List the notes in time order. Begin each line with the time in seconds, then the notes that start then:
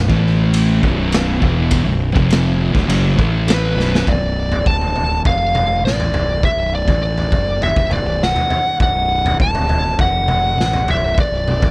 0.08 A1 A2 E3 A3, kick
0.27 snare
0.54 ride bell
0.82 B0 B1 F#2 B2, kick
1.12 snare, ride bell
1.41 E1 E2 B2 E3, kick
1.71 kick, ride bell
1.85 B0 B1 F#2
2.15 F1 F2 C3 F3, kick
2.30 snare, ride bell
2.73 D1 D2 A2, kick
2.77 snare
2.87 F#1 F#2 C#3 F#3, ride bell
3.17 A1 A2 E3 A3, kick
3.48 B4, snare, ride bell
3.76 B0 B1 F#2 B2
3.80 snare
3.95 snare
4.07 B0 D5, kick, floor tom
4.52 floor tom
4.66 D1 A5, kick
4.81 floor tom
4.96 floor tom
5.25 F1 F5, kick, floor tom
5.55 floor tom, mid tom
5.83 A1 D5
5.87 snare
6.00 floor tom
6.12 B0, floor tom
6.43 E5, kick, floor tom
6.57 B0
6.75 D5
6.87 A1, kick, floor tom
7.03 D5
7.18 floor tom
7.32 F#1, kick, floor tom
7.62 E5, floor tom
7.76 E1, kick
7.89 B0, floor tom, mid tom
7.93 D5
8.04 B0
8.23 F#5, snare
8.36 floor tom
8.50 floor tom
8.80 B0 F#5, kick, floor tom
9.26 floor tom
9.40 D1 A5, kick
9.55 floor tom
9.69 floor tom
9.99 F1 F#5, kick, floor tom
10.28 floor tom, mid tom
10.57 A1, snare
10.73 floor tom
10.87 B0 E5, floor tom
11.18 D5, kick, floor tom
11.32 B0
11.48 mid tom
11.62 A1, kick, floor tom